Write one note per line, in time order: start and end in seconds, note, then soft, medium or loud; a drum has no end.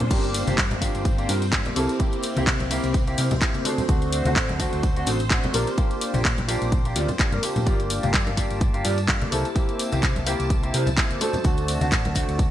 0.00 0.09 A#2 medium
0.00 closed hi-hat medium
0.00 tambourine soft
0.00 riser medium
0.00 low conga medium
0.10 0.43 G1 loud
0.10 0.44 A#3 medium
0.10 7.68 C4 medium
0.10 0.24 D4 loud
0.10 0.44 D4 medium
0.10 0.44 F4 medium
0.10 0.24 F4 loud
0.10 0.44 G4 loud
0.10 0.24 G4 loud
0.10 0.24 A#4 loud
0.10 7.68 C5 medium
0.10 kick loud
0.10 closed hi-hat medium
0.10 crash loud
0.10 tambourine soft
0.24 closed hi-hat soft
0.24 tambourine soft
0.34 open hi-hat loud
0.34 tambourine loud
0.47 0.56 G1 medium
0.47 0.79 A#3 medium
0.47 0.79 D4 medium
0.47 0.79 F4 medium
0.47 0.79 G4 medium
0.47 muted clean electric guitar stroke medium
0.47 closed hi-hat soft
0.47 tambourine soft
0.47 high conga medium
0.58 0.68 G2 medium
0.58 kick loud
0.58 clap loud
0.58 closed hi-hat medium
0.58 tambourine medium
0.71 0.89 G1 medium
0.71 muted clean electric guitar stroke soft
0.71 closed hi-hat soft
0.71 tambourine soft
0.71 low conga medium
0.81 1.15 A#3 medium
0.81 1.15 D4 medium
0.81 1.06 D4 medium
0.81 1.15 F4 medium
0.81 1.06 F4 medium
0.81 1.15 G4 loud
0.81 1.06 G4 medium
0.81 1.06 C5 medium
0.81 kick medium
0.81 open hi-hat loud
0.81 tambourine medium
0.95 1.25 G1 loud
0.95 closed hi-hat soft
0.95 tambourine soft
1.05 kick loud
1.05 closed hi-hat medium
1.05 tambourine medium
1.05 high conga medium
1.18 1.27 A#3 medium
1.18 1.28 D4 medium
1.18 1.28 F4 medium
1.18 1.28 G4 medium
1.18 closed hi-hat soft
1.18 tambourine soft
1.29 1.61 G2 medium
1.29 1.42 D4 loud
1.29 1.42 F4 loud
1.29 1.42 G4 loud
1.29 1.42 A#4 loud
1.29 open hi-hat loud
1.29 tambourine medium
1.42 closed hi-hat soft
1.42 tambourine soft
1.52 1.73 A#3 medium
1.52 1.73 D4 medium
1.52 1.74 F4 medium
1.52 1.74 G4 medium
1.52 kick loud
1.52 clap loud
1.52 closed hi-hat medium
1.52 tambourine medium
1.65 muted clean electric guitar stroke soft
1.65 closed hi-hat soft
1.65 tambourine soft
1.65 high conga loud
1.65 low conga medium
1.76 1.86 C2 medium
1.76 1.88 A#3 medium
1.76 1.88 C4 medium
1.76 2.15 C4 medium
1.76 1.88 E4 medium
1.76 2.15 E4 medium
1.76 2.15 G4 medium
1.76 1.88 A4 medium
1.76 2.15 A#4 loud
1.76 open hi-hat loud
1.76 tambourine medium
1.89 closed hi-hat soft
1.89 tambourine soft
2.00 2.33 A#3 medium
2.00 2.33 C4 medium
2.00 2.33 E4 medium
2.00 2.34 G4 loud
2.00 kick loud
2.00 closed hi-hat medium
2.00 tambourine medium
2.12 closed hi-hat soft
2.12 tambourine soft
2.23 muted clean electric guitar stroke soft
2.23 open hi-hat loud
2.23 tambourine loud
2.36 2.45 C2 medium
2.36 2.68 A#3 medium
2.36 2.68 C4 medium
2.36 2.68 E4 medium
2.36 2.68 G4 medium
2.36 muted clean electric guitar stroke medium
2.36 closed hi-hat soft
2.36 tambourine soft
2.36 high conga loud
2.47 2.57 C3 medium
2.47 kick loud
2.47 clap loud
2.47 closed hi-hat medium
2.47 tambourine medium
2.60 2.78 C2 medium
2.60 closed hi-hat soft
2.60 tambourine soft
2.60 low conga loud
2.70 3.04 A#3 medium
2.70 2.94 C4 medium
2.70 3.04 C4 medium
2.70 3.04 E4 medium
2.70 2.94 E4 medium
2.70 2.94 G4 medium
2.70 3.04 G4 loud
2.70 2.94 A#4 loud
2.70 open hi-hat loud
2.70 tambourine medium
2.83 3.14 C2 loud
2.83 closed hi-hat soft
2.83 tambourine soft
2.94 kick loud
2.94 closed hi-hat medium
2.94 tambourine medium
2.94 high conga medium
3.07 3.17 A#3 medium
3.07 3.17 C4 medium
3.07 3.17 E4 medium
3.07 3.17 G4 loud
3.07 closed hi-hat soft
3.07 tambourine soft
3.18 3.28 C3 medium
3.18 3.31 C4 loud
3.18 3.31 E4 loud
3.18 3.31 G4 loud
3.18 3.31 A#4 loud
3.18 open hi-hat loud
3.18 tambourine medium
3.31 3.39 C2 medium
3.31 closed hi-hat soft
3.31 tambourine soft
3.31 low conga medium
3.41 3.62 A#3 medium
3.41 3.63 C4 medium
3.41 3.63 E4 medium
3.41 3.63 G4 medium
3.41 kick loud
3.41 clap loud
3.41 closed hi-hat medium
3.41 tambourine medium
3.54 muted clean electric guitar stroke soft
3.54 closed hi-hat soft
3.54 tambourine soft
3.54 high conga loud
3.65 3.77 A3 medium
3.65 3.77 C4 medium
3.65 4.04 D4 medium
3.65 3.77 D4 medium
3.65 4.04 F#4 medium
3.65 4.04 A4 medium
3.65 3.77 A4 medium
3.65 4.04 C5 loud
3.65 open hi-hat loud
3.65 tambourine medium
3.78 closed hi-hat soft
3.78 tambourine soft
3.78 low conga medium
3.88 4.21 D2 loud
3.88 4.22 A3 medium
3.88 4.22 C4 medium
3.88 4.22 D4 medium
3.88 4.22 F#4 loud
3.88 kick loud
3.88 closed hi-hat medium
3.88 tambourine soft
4.02 closed hi-hat soft
4.02 tambourine soft
4.12 open hi-hat loud
4.12 tambourine medium
4.25 4.34 D2 medium
4.25 4.57 A3 medium
4.25 4.57 C4 medium
4.25 4.57 D4 medium
4.25 4.57 F#4 medium
4.25 muted clean electric guitar stroke medium
4.25 closed hi-hat soft
4.25 tambourine soft
4.25 high conga medium
4.36 4.46 A1 medium
4.36 kick loud
4.36 clap loud
4.36 closed hi-hat medium
4.36 tambourine medium
4.49 4.67 D2 medium
4.49 closed hi-hat soft
4.49 tambourine soft
4.49 low conga medium
4.59 4.93 A3 medium
4.59 4.93 C4 medium
4.59 4.83 D4 medium
4.59 4.93 D4 medium
4.59 4.83 F#4 medium
4.59 4.93 F#4 loud
4.59 4.83 A4 medium
4.59 4.83 C5 loud
4.59 kick medium
4.59 open hi-hat loud
4.59 tambourine medium
4.73 5.03 D2 loud
4.73 closed hi-hat soft
4.73 tambourine soft
4.83 kick loud
4.83 closed hi-hat medium
4.83 tambourine medium
4.83 high conga medium
4.96 5.05 A3 medium
4.96 5.06 C4 medium
4.96 5.06 D4 medium
4.96 5.06 F#4 loud
4.96 closed hi-hat soft
4.96 tambourine soft
5.06 5.39 A1 medium
5.06 5.20 D4 loud
5.06 5.20 F#4 loud
5.06 5.20 A4 loud
5.06 5.20 C5 loud
5.06 open hi-hat loud
5.06 tambourine medium
5.19 closed hi-hat soft
5.19 tambourine soft
5.30 5.51 A3 medium
5.30 5.51 C4 medium
5.30 5.52 D4 medium
5.30 5.52 F#4 medium
5.30 muted clean electric guitar stroke medium
5.30 kick loud
5.30 clap loud
5.30 closed hi-hat medium
5.30 tambourine soft
5.43 muted clean electric guitar stroke soft
5.43 closed hi-hat soft
5.43 tambourine soft
5.43 high conga medium
5.43 low conga medium
5.54 5.64 A#1 medium
5.54 5.65 A#3 medium
5.54 5.65 D4 medium
5.54 5.93 F4 medium
5.54 5.66 F4 medium
5.54 5.93 G4 medium
5.54 5.66 A#4 medium
5.54 5.93 A#4 medium
5.54 5.93 D5 loud
5.54 open hi-hat loud
5.54 tambourine medium
5.67 closed hi-hat soft
5.67 tambourine soft
5.77 6.11 A#3 medium
5.77 6.11 D4 medium
5.77 6.11 F4 medium
5.77 6.11 G4 loud
5.77 kick loud
5.77 closed hi-hat medium
5.77 tambourine medium
5.91 closed hi-hat soft
5.91 tambourine soft
6.01 muted clean electric guitar stroke soft
6.01 open hi-hat loud
6.01 tambourine medium
6.14 6.23 A#1 medium
6.14 6.46 A#3 medium
6.14 6.46 D4 medium
6.14 6.46 F4 medium
6.14 6.46 G4 medium
6.14 muted clean electric guitar stroke medium
6.14 closed hi-hat soft
6.14 tambourine soft
6.14 high conga loud
6.25 6.35 A#2 medium
6.25 kick loud
6.25 clap loud
6.25 closed hi-hat medium
6.25 tambourine medium
6.38 6.56 A#1 medium
6.38 muted clean electric guitar stroke soft
6.38 closed hi-hat soft
6.38 tambourine soft
6.38 low conga medium
6.48 6.82 A#3 medium
6.48 6.82 D4 medium
6.48 6.72 F4 medium
6.48 6.82 F4 medium
6.48 6.72 G4 medium
6.48 6.82 G4 loud
6.48 6.72 A#4 medium
6.48 6.72 D5 loud
6.48 open hi-hat loud
6.48 tambourine medium
6.62 6.92 A#1 loud
6.62 closed hi-hat soft
6.62 tambourine soft
6.72 kick loud
6.72 closed hi-hat medium
6.72 tambourine medium
6.72 high conga medium
6.85 6.94 A#3 medium
6.85 6.94 D4 medium
6.85 6.95 F4 medium
6.85 6.95 G4 medium
6.85 closed hi-hat soft
6.85 tambourine soft
6.96 7.06 D2 medium
6.96 7.09 F4 loud
6.96 7.09 G4 loud
6.96 7.09 A#4 loud
6.96 7.09 D5 loud
6.96 open hi-hat loud
6.96 tambourine medium
7.08 closed hi-hat soft
7.08 tambourine soft
7.08 low conga medium
7.19 7.30 A#3 medium
7.19 7.30 D4 medium
7.19 7.31 F4 medium
7.19 7.31 G4 medium
7.19 muted clean electric guitar stroke medium
7.19 muted fingered electric bass stroke soft
7.19 kick loud
7.19 clap loud
7.19 closed hi-hat medium
7.19 tambourine soft
7.32 7.41 G2 loud
7.32 7.40 A#3 medium
7.32 7.40 D4 medium
7.32 7.40 F4 medium
7.32 7.41 A#4 medium
7.32 muted clean electric guitar stroke soft
7.32 closed hi-hat soft
7.32 tambourine soft
7.32 high conga medium
7.42 7.64 A#3 medium
7.42 7.64 D4 medium
7.42 7.64 F4 medium
7.42 7.64 G4 medium
7.42 open hi-hat loud
7.42 tambourine medium
7.56 7.64 A#2 medium
7.56 closed hi-hat soft
7.56 tambourine soft
7.56 low conga medium
7.66 7.99 G1 loud
7.66 8.00 A#3 medium
7.66 8.00 D4 medium
7.66 7.80 F4 loud
7.66 8.00 F4 medium
7.66 7.80 G4 loud
7.66 8.00 G4 loud
7.66 7.80 A#4 loud
7.66 7.80 D5 loud
7.66 12.51 A5 medium
7.66 kick loud
7.66 closed hi-hat medium
7.66 tambourine medium
7.80 closed hi-hat soft
7.80 tambourine soft
7.90 open hi-hat loud
7.90 tambourine medium
8.03 8.12 G1 medium
8.03 8.35 A#3 medium
8.03 8.35 D4 medium
8.03 8.35 F4 medium
8.03 8.35 G4 medium
8.03 muted clean electric guitar stroke medium
8.03 closed hi-hat soft
8.03 tambourine soft
8.03 high conga medium
8.14 8.24 G2 medium
8.14 kick loud
8.14 clap loud
8.14 closed hi-hat medium
8.14 tambourine medium
8.26 8.45 G1 medium
8.26 closed hi-hat soft
8.26 tambourine soft
8.26 low conga medium
8.37 8.71 A#3 medium
8.37 8.71 D4 medium
8.37 8.61 F4 medium
8.37 8.71 F4 medium
8.37 8.61 G4 medium
8.37 8.71 G4 loud
8.37 8.61 A#4 medium
8.37 8.61 D5 loud
8.37 kick medium
8.37 open hi-hat loud
8.37 tambourine medium
8.51 8.81 G1 medium
8.51 closed hi-hat soft
8.51 tambourine soft
8.61 kick loud
8.61 closed hi-hat medium
8.61 tambourine soft
8.61 high conga medium
8.73 8.83 A#3 medium
8.73 8.83 D4 medium
8.73 8.83 F4 medium
8.73 8.84 G4 loud
8.73 closed hi-hat soft
8.73 tambourine soft
8.85 9.17 G2 medium
8.85 8.98 F4 loud
8.85 8.98 G4 loud
8.85 8.98 A#4 loud
8.85 8.98 D5 loud
8.85 open hi-hat loud
8.85 tambourine medium
8.98 closed hi-hat soft
8.98 tambourine soft
9.08 9.29 A#3 medium
9.08 9.29 D4 medium
9.08 9.29 F4 medium
9.08 9.30 G4 medium
9.08 muted clean electric guitar stroke medium
9.08 kick loud
9.08 clap loud
9.08 closed hi-hat medium
9.08 tambourine soft
9.21 muted clean electric guitar stroke soft
9.21 closed hi-hat soft
9.21 tambourine soft
9.21 high conga loud
9.21 low conga medium
9.31 9.42 C2 medium
9.31 9.43 A#3 medium
9.31 9.43 C4 medium
9.31 9.44 E4 medium
9.31 9.71 E4 medium
9.31 9.71 G4 medium
9.31 9.44 A4 medium
9.31 9.71 A#4 medium
9.31 9.71 C5 loud
9.31 open hi-hat loud
9.31 tambourine medium
9.45 closed hi-hat soft
9.45 tambourine soft
9.55 9.89 A#3 medium
9.55 9.89 C4 medium
9.55 9.89 E4 medium
9.55 9.89 G4 loud
9.55 kick loud
9.55 closed hi-hat medium
9.55 tambourine medium
9.69 closed hi-hat soft
9.69 tambourine soft
9.79 muted clean electric guitar stroke soft
9.79 open hi-hat loud
9.79 tambourine loud
9.92 10.01 C2 medium
9.92 10.24 A#3 medium
9.92 10.24 C4 medium
9.92 10.24 E4 medium
9.92 10.24 G4 medium
9.92 muted clean electric guitar stroke medium
9.92 closed hi-hat soft
9.92 tambourine soft
9.92 high conga medium
10.03 10.13 C3 medium
10.03 kick loud
10.03 clap loud
10.03 closed hi-hat medium
10.03 tambourine medium
10.16 10.34 C2 medium
10.16 muted clean electric guitar stroke soft
10.16 closed hi-hat soft
10.16 tambourine soft
10.16 low conga medium
10.26 10.60 A#3 medium
10.26 10.60 C4 medium
10.26 10.60 E4 medium
10.26 10.50 E4 medium
10.26 10.50 G4 medium
10.26 10.60 G4 loud
10.26 10.50 A#4 medium
10.26 10.50 C5 loud
10.26 open hi-hat loud
10.26 tambourine medium
10.40 10.70 C2 medium
10.40 closed hi-hat soft
10.40 tambourine soft
10.50 kick loud
10.50 closed hi-hat medium
10.50 tambourine medium
10.50 high conga medium
10.63 10.72 A#3 medium
10.63 10.72 C4 medium
10.63 10.73 E4 medium
10.63 10.73 G4 medium
10.63 closed hi-hat soft
10.63 tambourine soft
10.74 10.84 C3 medium
10.74 10.87 E4 loud
10.74 10.87 G4 loud
10.74 10.87 A#4 loud
10.74 10.87 C5 loud
10.74 open hi-hat loud
10.74 tambourine medium
10.87 10.95 C2 medium
10.87 closed hi-hat soft
10.87 tambourine soft
10.87 low conga medium
10.97 11.18 A#3 medium
10.97 11.18 C4 medium
10.97 11.19 E4 medium
10.97 11.19 G4 medium
10.97 kick loud
10.97 clap loud
10.97 closed hi-hat medium
10.97 tambourine medium
11.10 muted clean electric guitar stroke soft
11.10 closed hi-hat soft
11.10 tambourine soft
11.10 high conga medium
11.21 11.32 A3 medium
11.21 11.32 C4 medium
11.21 11.60 D4 medium
11.21 11.33 D4 medium
11.21 11.60 F#4 medium
11.21 11.33 A4 medium
11.21 11.60 A4 medium
11.21 11.60 C5 loud
11.21 open hi-hat loud
11.21 tambourine medium
11.33 closed hi-hat soft
11.33 tambourine soft
11.33 low conga medium
11.44 11.77 D2 loud
11.44 11.78 A3 loud
11.44 11.78 C4 medium
11.44 11.78 D4 medium
11.44 11.78 F#4 loud
11.44 kick loud
11.44 closed hi-hat medium
11.44 tambourine medium
11.57 closed hi-hat soft
11.57 tambourine soft
11.68 open hi-hat loud
11.68 tambourine medium
11.81 11.90 D2 medium
11.81 12.13 A3 medium
11.81 12.13 C4 medium
11.81 12.13 D4 medium
11.81 12.13 F#4 medium
11.81 muted clean electric guitar stroke medium
11.81 closed hi-hat soft
11.81 tambourine soft
11.81 high conga medium
11.92 kick loud
11.92 clap loud
11.92 closed hi-hat medium
11.92 tambourine medium
12.05 12.23 D2 medium
12.05 muted clean electric guitar stroke soft
12.05 closed hi-hat soft
12.05 tambourine soft
12.05 low conga medium
12.15 12.49 A3 medium
12.15 12.49 C4 medium
12.15 12.39 D4 medium
12.15 12.49 D4 medium
12.15 12.39 F#4 medium
12.15 12.49 F#4 loud
12.15 12.39 A4 medium
12.15 12.39 C5 loud
12.15 kick medium
12.15 open hi-hat loud
12.15 tambourine loud
12.28 12.51 D2 loud
12.28 closed hi-hat soft
12.28 tambourine soft
12.39 kick loud
12.39 closed hi-hat medium
12.39 tambourine medium
12.39 high conga medium